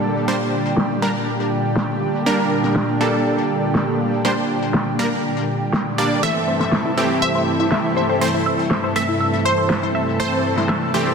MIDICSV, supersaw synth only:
0, 0, Header, 1, 2, 480
1, 0, Start_track
1, 0, Tempo, 495868
1, 271, Time_signature, 4, 2, 24, 8
1, 10786, End_track
2, 0, Start_track
2, 0, Title_t, "Supersaw synth"
2, 0, Program_c, 0, 81
2, 0, Note_on_c, 0, 55, 74
2, 0, Note_on_c, 0, 58, 67
2, 0, Note_on_c, 0, 62, 66
2, 0, Note_on_c, 0, 69, 83
2, 243, Note_off_c, 0, 55, 0
2, 243, Note_off_c, 0, 58, 0
2, 243, Note_off_c, 0, 62, 0
2, 243, Note_off_c, 0, 69, 0
2, 271, Note_on_c, 0, 55, 91
2, 271, Note_on_c, 0, 58, 81
2, 271, Note_on_c, 0, 62, 80
2, 271, Note_on_c, 0, 72, 99
2, 338, Note_off_c, 0, 55, 0
2, 338, Note_off_c, 0, 58, 0
2, 338, Note_off_c, 0, 62, 0
2, 338, Note_off_c, 0, 72, 0
2, 991, Note_on_c, 0, 55, 89
2, 991, Note_on_c, 0, 58, 81
2, 991, Note_on_c, 0, 62, 83
2, 991, Note_on_c, 0, 70, 96
2, 1057, Note_off_c, 0, 55, 0
2, 1058, Note_off_c, 0, 58, 0
2, 1058, Note_off_c, 0, 62, 0
2, 1058, Note_off_c, 0, 70, 0
2, 2190, Note_on_c, 0, 70, 99
2, 2191, Note_on_c, 0, 55, 89
2, 2191, Note_on_c, 0, 58, 83
2, 2191, Note_on_c, 0, 62, 80
2, 2883, Note_off_c, 0, 55, 0
2, 2883, Note_off_c, 0, 58, 0
2, 2883, Note_off_c, 0, 62, 0
2, 2883, Note_off_c, 0, 70, 0
2, 2910, Note_on_c, 0, 69, 84
2, 2911, Note_on_c, 0, 55, 77
2, 2911, Note_on_c, 0, 58, 73
2, 2911, Note_on_c, 0, 62, 71
2, 4083, Note_off_c, 0, 55, 0
2, 4083, Note_off_c, 0, 58, 0
2, 4083, Note_off_c, 0, 62, 0
2, 4083, Note_off_c, 0, 69, 0
2, 4111, Note_on_c, 0, 55, 90
2, 4111, Note_on_c, 0, 58, 82
2, 4111, Note_on_c, 0, 62, 84
2, 4111, Note_on_c, 0, 72, 97
2, 4178, Note_off_c, 0, 55, 0
2, 4178, Note_off_c, 0, 58, 0
2, 4178, Note_off_c, 0, 62, 0
2, 4178, Note_off_c, 0, 72, 0
2, 4831, Note_on_c, 0, 55, 95
2, 4831, Note_on_c, 0, 58, 86
2, 4831, Note_on_c, 0, 62, 85
2, 4832, Note_on_c, 0, 70, 103
2, 4898, Note_off_c, 0, 55, 0
2, 4898, Note_off_c, 0, 58, 0
2, 4898, Note_off_c, 0, 62, 0
2, 4898, Note_off_c, 0, 70, 0
2, 5791, Note_on_c, 0, 55, 86
2, 5791, Note_on_c, 0, 58, 82
2, 5791, Note_on_c, 0, 62, 75
2, 5791, Note_on_c, 0, 74, 99
2, 6003, Note_off_c, 0, 55, 0
2, 6003, Note_off_c, 0, 58, 0
2, 6003, Note_off_c, 0, 62, 0
2, 6003, Note_off_c, 0, 74, 0
2, 6031, Note_on_c, 0, 52, 91
2, 6031, Note_on_c, 0, 57, 81
2, 6031, Note_on_c, 0, 60, 82
2, 6031, Note_on_c, 0, 69, 96
2, 6723, Note_off_c, 0, 52, 0
2, 6723, Note_off_c, 0, 57, 0
2, 6723, Note_off_c, 0, 60, 0
2, 6723, Note_off_c, 0, 69, 0
2, 6751, Note_on_c, 0, 57, 69
2, 6752, Note_on_c, 0, 52, 78
2, 6752, Note_on_c, 0, 60, 68
2, 6752, Note_on_c, 0, 67, 83
2, 7923, Note_off_c, 0, 52, 0
2, 7923, Note_off_c, 0, 57, 0
2, 7923, Note_off_c, 0, 60, 0
2, 7924, Note_off_c, 0, 67, 0
2, 7951, Note_on_c, 0, 52, 92
2, 7951, Note_on_c, 0, 60, 81
2, 7952, Note_on_c, 0, 57, 81
2, 7952, Note_on_c, 0, 72, 105
2, 8018, Note_off_c, 0, 52, 0
2, 8018, Note_off_c, 0, 57, 0
2, 8018, Note_off_c, 0, 60, 0
2, 8018, Note_off_c, 0, 72, 0
2, 8671, Note_on_c, 0, 52, 93
2, 8671, Note_on_c, 0, 57, 85
2, 8671, Note_on_c, 0, 60, 85
2, 8671, Note_on_c, 0, 69, 98
2, 8738, Note_off_c, 0, 52, 0
2, 8738, Note_off_c, 0, 57, 0
2, 8738, Note_off_c, 0, 60, 0
2, 8738, Note_off_c, 0, 69, 0
2, 9871, Note_on_c, 0, 52, 91
2, 9871, Note_on_c, 0, 57, 82
2, 9871, Note_on_c, 0, 60, 79
2, 9871, Note_on_c, 0, 69, 99
2, 10563, Note_off_c, 0, 52, 0
2, 10563, Note_off_c, 0, 57, 0
2, 10563, Note_off_c, 0, 60, 0
2, 10563, Note_off_c, 0, 69, 0
2, 10591, Note_on_c, 0, 52, 78
2, 10591, Note_on_c, 0, 57, 70
2, 10591, Note_on_c, 0, 60, 70
2, 10591, Note_on_c, 0, 67, 85
2, 10786, Note_off_c, 0, 52, 0
2, 10786, Note_off_c, 0, 57, 0
2, 10786, Note_off_c, 0, 60, 0
2, 10786, Note_off_c, 0, 67, 0
2, 10786, End_track
0, 0, End_of_file